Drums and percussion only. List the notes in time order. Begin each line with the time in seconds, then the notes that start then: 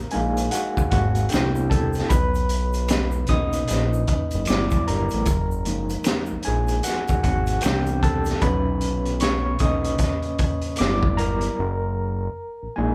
0.11 closed hi-hat
0.37 closed hi-hat, shaker
0.51 closed hi-hat, shaker
0.77 kick, shaker
0.91 kick, closed hi-hat
1.15 closed hi-hat, shaker
1.29 finger snap, closed hi-hat, shaker
1.34 snare
1.56 shaker
1.71 kick, closed hi-hat
1.93 closed hi-hat, shaker
1.98 snare
2.10 kick, closed hi-hat, shaker
2.35 closed hi-hat, shaker
2.49 closed hi-hat, shaker
2.73 closed hi-hat, shaker
2.88 finger snap, snare, closed hi-hat, shaker
3.12 shaker
3.27 kick, closed hi-hat
3.53 closed hi-hat, shaker
3.68 closed hi-hat, shaker
3.72 snare
3.94 shaker
4.07 kick, closed hi-hat
4.31 closed hi-hat, shaker
4.45 finger snap, closed hi-hat, shaker
4.50 snare
4.71 kick, closed hi-hat, shaker
4.88 closed hi-hat
5.09 closed hi-hat, shaker
5.25 kick, closed hi-hat, shaker
5.51 shaker
5.65 closed hi-hat, shaker
5.89 closed hi-hat, shaker
6.04 finger snap, snare, closed hi-hat, shaker
6.26 shaker
6.43 closed hi-hat
6.68 closed hi-hat, shaker
6.83 closed hi-hat, shaker
6.87 snare
7.07 kick, closed hi-hat, shaker
7.24 kick, closed hi-hat
7.47 closed hi-hat, shaker
7.61 finger snap, closed hi-hat, shaker
7.66 snare
7.87 closed hi-hat, shaker
8.03 kick, closed hi-hat
8.25 closed hi-hat, shaker
8.29 snare
8.41 kick, closed hi-hat
8.81 closed hi-hat
9.05 closed hi-hat
9.20 snare, closed hi-hat
9.59 kick, closed hi-hat
9.84 closed hi-hat
9.98 kick, closed hi-hat
10.03 snare
10.22 closed hi-hat
10.39 kick, closed hi-hat
10.62 closed hi-hat
10.76 closed hi-hat
10.81 snare
11.03 kick
11.18 closed hi-hat
11.41 closed hi-hat